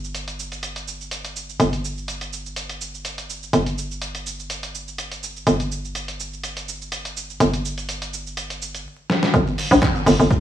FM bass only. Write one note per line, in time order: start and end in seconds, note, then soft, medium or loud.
0.00 1.57 G1 medium
1.60 3.51 G1 medium
3.53 5.45 G1 medium
5.47 7.38 G1 medium
7.40 8.85 G1 medium
9.34 9.42 G1 loud
9.71 9.78 A#1 loud
10.06 10.15 G1 loud
10.20 10.26 G1 medium